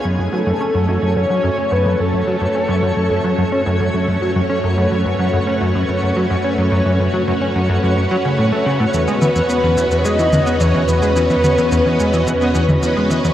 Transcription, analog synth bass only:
\new Staff \with { instrumentName = "Analog synth bass" } { \clef bass \time 4/4 \key fis \dorian \tempo 4 = 108 fis,16 fis,16 fis16 fis,16 cis'16 fis,16 fis,16 fis,16 fis,16 fis16 fis,16 cis'16 fis,16 fis,16 fis,16 fis,16 | fis16 fis,16 cis'16 fis,16 fis,16 fis,16 fis,16 fis16 fis,16 cis'16 fis,16 fis,16 fis,16 fis,16 fis16 fis,16 | cis'16 fis,16 fis,16 fis,16 fis,16 fis16 fis,16 cis'16 fis,16 fis,16 fis,16 fis,16 fis16 fis,16 cis'16 fis,16 | fis,16 fis,16 fis,16 fis16 fis,16 cis'16 fis,16 fis,16 fis,16 fis,16 fis16 cis16 a,16 a16 cis16 a,16 |
e,16 gis16 e16 e,16 b16 e,16 e,16 e,16 gis16 e16 e,16 b16 e,16 e,16 e,16 gis16 | e16 e,16 b16 e,16 e,16 e,16 gis16 e16 e,16 b16 e,16 e,16 e,16 gis16 e16 e,16 | }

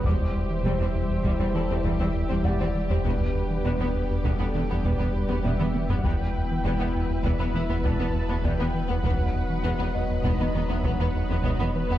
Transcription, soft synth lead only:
\new Staff \with { instrumentName = "Soft synth lead" } { \time 5/4 \key e \minor \tempo 4 = 100 c''2. e''4 d''8. c''16 | b'2 a'4 b'4 e''8. fis''16 | g''2 e''4 a''4 g''8. fis''16~ | fis''2 dis''8. e''16 fis''4 dis''8 b'8 | }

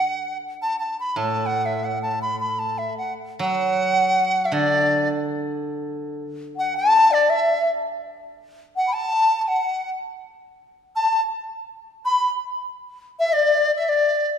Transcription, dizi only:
\new Staff \with { instrumentName = "Dizi" } { \time 2/4 \tempo 4 = 108 fis''4 \tuplet 3/2 { a''8 a''8 b''8 } | \tuplet 3/2 { a''8. fis''8 e''16~ e''16 fis''8 a''8 b''16~ } | \tuplet 3/2 { b''16 b''8 a''8 e''16~ e''16 fis''8 r8. } | fis''4.~ fis''16. e''32 |
d''4 r4 | r4 \tuplet 3/2 { r4 fis''8 } | \tuplet 3/2 { a''4 d''8 } e''8. r16 | r4 \tuplet 3/2 { r4 fis''8 } |
a''8.~ a''32 a''32 fis''8. r16 | r4 \tuplet 3/2 { r4 a''8~ } | a''32 r8. r32 \tuplet 3/2 { r4 b''8~ } | b''32 r4. r32 e''16 |
d''8. e''16 d''8. r16 | }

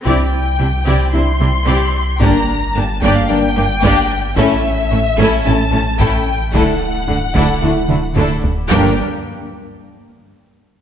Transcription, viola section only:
\new Staff \with { instrumentName = "Viola section" } { \time 4/4 \key g \dorian \tempo 4 = 111 <c' e'>8 r8 <c' e'>8 <c' e'>8 <c' e'>8 <c' e'>8 <c' e'>8 r8 | <bes d'>8 r8 <bes d'>8 <bes d'>8 <bes d'>8 <bes d'>8 <bes d'>8 r8 | <a cis'>8 r8 <a cis'>8 <a cis'>8 <a cis'>8 <a cis'>8 <a cis'>8 r8 | <a d'>8 r8 <a d'>8 <a d'>8 <a d'>8 <a d'>8 <a d'>8 r8 |
<g d'>8 r2. r8 | }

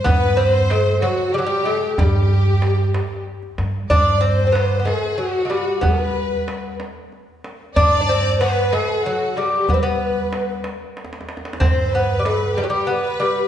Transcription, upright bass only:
\new Staff \with { instrumentName = "Upright bass" } { \clef bass \time 6/8 \tempo 4. = 62 g,2 r4 | g,2 r8 g,8 | g,2 r4 | g2 r4 |
g,2 r4 | g2 r4 | g,2 r4 | }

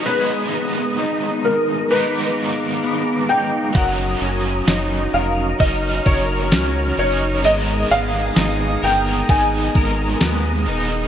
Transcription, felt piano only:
\new Staff \with { instrumentName = "Felt piano" } { \time 4/4 \key aes \lydian \tempo 4 = 65 ces''4. bes'8 ces''4 r8 g''8 | ges''4. f''8 ees''8 des''4 des''8 | ees''8 f''4 g''8 aes''4. r8 | }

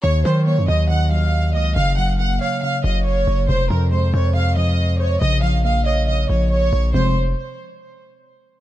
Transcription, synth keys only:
\new Staff \with { instrumentName = "Synth keys" } { \clef bass \time 4/4 \key f \phrygian \tempo 4 = 139 ees8 ges8 bes8 ees''8 ees8 ges4 ees''8 | des8 ges8 bes8 des''8 des8 ges4 des''8 | c8 f8 aes8 c''8 c8 f4 c''8 | des8 f8 bes8 des''8 des8 f4 des''8 |
<c f aes c'>8 r2. r8 | }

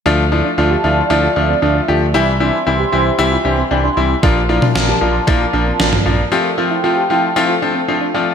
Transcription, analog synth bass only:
\new Staff \with { instrumentName = "Analog synth bass" } { \clef bass \time 4/4 \key d \minor \tempo 4 = 115 d,4 d,8 d,8 d,8 d,8 d,8 d,8 | c,4 c,8 c,8 c,8 c,8 c,8 c,8 | bes,,4 bes,,8 bes,,8 bes,,8 bes,,8 bes,,8 bes,,8 | r1 | }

